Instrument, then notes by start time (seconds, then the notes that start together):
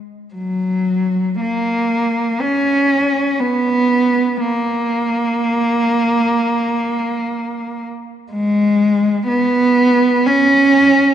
cello
0.34 F#3
1.40 A#3
2.40 C#4
3.40 B3
4.40 A#3
8.32 G#3
9.27 B3
10.26 C#4